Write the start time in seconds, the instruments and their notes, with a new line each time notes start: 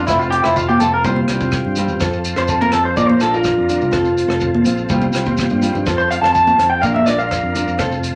Already playing: tonewheel organ F4
0.07 fingered electric bass F1, nylon-string guitar A3 C4 F4, tonewheel organ C4 A4, clean electric guitar E4, kick, cross-stick, shekere
0.19 clean electric guitar F4, shekere
0.31 clean electric guitar G4, closed hi-hat
0.43 fingered electric bass F1, nylon-string guitar C4 F4, clean electric guitar E4, cross-stick, shekere
0.56 clean electric guitar F4, kick, shekere
0.69 clean electric guitar G4, high conga, shekere
0.80 fingered electric bass F1, nylon-string guitar A3 C4 F4, clean electric guitar A4, closed hi-hat, low conga, shekere
0.94 clean electric guitar A#4
1.04 fingered electric bass C2, nylon-string guitar G3 C4 F4, tonewheel organ G4, clean electric guitar C5, kick, high conga, shekere
1.16 high conga
1.28 fingered electric bass C2, nylon-string guitar G3 F4, muted nylon-string guitar stroke, cross-stick, closed hi-hat, shekere
1.41 nylon-string guitar C4 F4, kick, shekere
1.52 kick, cross-stick, shekere
1.66 fingered electric bass G2
1.76 nylon-string guitar G3 C4 F4, closed hi-hat, low conga, shekere
1.88 fingered electric bass E2, shekere
2.00 fingered electric bass F2, nylon-string guitar C4 F4 A4, tonewheel organ A4, kick, cross-stick, shekere
2.13 shekere
2.24 closed hi-hat, shekere
2.36 fingered electric bass F2, nylon-string guitar F4 A4, clean electric guitar C5, cross-stick, shekere
2.48 clean electric guitar A4, kick, shekere
2.61 clean electric guitar A#4, high conga, shekere
2.71 fingered electric bass F2, nylon-string guitar C4 F4 A4, clean electric guitar A4, cross-stick, closed hi-hat, shekere
2.85 clean electric guitar C5
2.96 fingered electric bass A#1, nylon-string guitar D4 F4 A#4, tonewheel organ D4 A#4, clean electric guitar D5, kick, high conga, shekere
3.09 clean electric guitar C5, high conga
3.20 fingered electric bass A#1, nylon-string guitar D4 F4 A#4, clean electric guitar A4, cross-stick, closed hi-hat, shekere
3.34 clean electric guitar F4, nylon-string guitar F4 A#4, shekere
3.44 kick, cross-stick, shekere
3.57 fingered electric bass F2
3.69 nylon-string guitar D4 F4 A#4, closed hi-hat, low conga, shekere
3.81 fingered electric bass C2, shekere
3.91 fingered electric bass F1, nylon-string guitar C4 F4 A4, tonewheel organ C4 A4, kick, cross-stick, shekere
4.05 shekere
4.17 closed hi-hat, shekere
4.28 fingered electric bass F1, nylon-string guitar F4 A4, cross-stick
4.40 kick, shekere
4.55 high conga
4.65 fingered electric bass A#1, nylon-string guitar C4 F4, closed hi-hat, low conga, shekere
4.77 shekere
4.89 fingered electric bass C2, nylon-string guitar G3 C4 F4, tonewheel organ G4, kick, high conga, shekere
5.01 high conga, shekere
5.13 fingered electric bass C2, nylon-string guitar G3 C4 F4, cross-stick, closed hi-hat, shekere
5.25 nylon-string guitar C4 F4, kick, high conga, shekere
5.37 kick, cross-stick, high conga, shekere
5.50 fingered electric bass G2, high conga, shekere
5.61 nylon-string guitar G3 F4, closed hi-hat, low conga, shekere
5.75 fingered electric bass G2, low conga, shekere
5.86 fingered electric bass F2, nylon-string guitar C4 F4 A4, tonewheel organ F4 A4, kick, cross-stick, shekere
5.98 clean electric guitar C5, shekere
6.11 clean electric guitar F5, closed hi-hat, shekere
6.21 fingered electric bass F2, nylon-string guitar F4 A4, clean electric guitar A5, cross-stick, shekere
6.33 clean electric guitar A5, kick, shekere
6.47 high conga, shekere
6.58 fingered electric bass F2, nylon-string guitar C4 F4, cross-stick, closed hi-hat, low conga
6.70 clean electric guitar G5
6.81 fingered electric bass A#1, nylon-string guitar D4 F4 A#4, tonewheel organ D4 A#4, clean electric guitar F5, kick, high conga, shekere
6.94 clean electric guitar E5, high conga
7.06 fingered electric bass A#1, nylon-string guitar D4 F4 A#4, clean electric guitar D5, cross-stick, closed hi-hat, shekere
7.18 nylon-string guitar F4 A#4, clean electric guitar F5, shekere
7.31 kick, cross-stick, shekere
7.43 fingered electric bass F2
7.54 nylon-string guitar D4 F4 A#4, closed hi-hat, low conga, shekere
7.68 fingered electric bass F2, shekere
7.78 fingered electric bass F1, nylon-string guitar C4 F4 A4, kick, cross-stick, shekere
7.82 tonewheel organ C4 A4
7.92 shekere
8.03 closed hi-hat, shekere